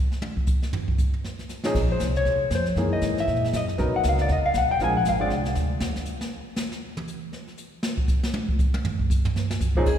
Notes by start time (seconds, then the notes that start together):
0.12 snare
0.22 high tom
0.37 kick
0.47 kick, hi-hat pedal
0.62 snare
0.73 floor tom
0.88 kick
0.98 kick, hi-hat pedal
1.14 floor tom
1.24 snare
1.39 snare
1.49 snare, hi-hat pedal
1.64 A#2 F3 C4 C#4 D#4 G#4, snare
1.74 A#1, brush sweep, kick, snare, crash
1.92 C5
2.00 C2, kick, snare, hi-hat pedal
2.15 C#5, snare
2.25 D#2, brush sweep, kick, snare
2.50 F2, kick, snare, hi-hat pedal
2.55 C5
2.66 snare
2.76 F#2 D#3 E3 A#3 C#4 G#4, brush sweep, kick, snare
2.93 D#5
3.01 G#2, kick, snare, hi-hat pedal
3.17 E5, snare
3.27 A#2, brush sweep, kick, snare
3.36 snare
3.44 snare
3.53 F#2 D#5, kick, snare, hi-hat pedal
3.68 snare
3.78 B1 F#3 B3 C#4 D#4 A#4, brush sweep, kick, snare
3.93 F#5, muted upright bass stroke
4.03 C#2, kick, snare, hi-hat pedal
4.09 F5
4.18 D5, snare
4.28 D#2, brush sweep, kick, snare
4.32 D#5
4.44 F5, muted upright bass stroke
4.54 B1, kick, snare, hi-hat pedal
4.58 F#5
4.71 G5
4.79 A#1 G#3 C4 D4 F4 A#4, brush sweep, kick, snare
4.84 G#5
4.97 F#5
5.04 G#1, kick, snare, hi-hat pedal
5.09 F5
5.20 G#3 C4 D4 F4 C5 D5
5.30 C2, brush sweep, kick, snare
5.45 snare
5.55 D2, kick, snare, hi-hat pedal
5.80 D#2, snare
5.96 snare
6.05 hi-hat pedal
6.21 snare
6.56 snare, hi-hat pedal
6.72 snare
6.97 mid tom
7.07 hi-hat pedal
7.33 snare
7.48 snare
7.57 hi-hat pedal
7.83 snare
7.98 kick
8.08 kick, hi-hat pedal
8.23 snare
8.34 high tom
8.49 kick
8.59 kick, hi-hat pedal
8.74 high tom
8.85 floor tom
8.99 kick
9.10 kick, hi-hat pedal
9.25 floor tom
9.36 snare
9.51 snare
9.61 kick, hi-hat pedal
9.76 A#2 F3 C4 C#4 D#4 G#4, kick
9.86 A#1 G#4, brush sweep, kick, snare, crash
9.93 G#1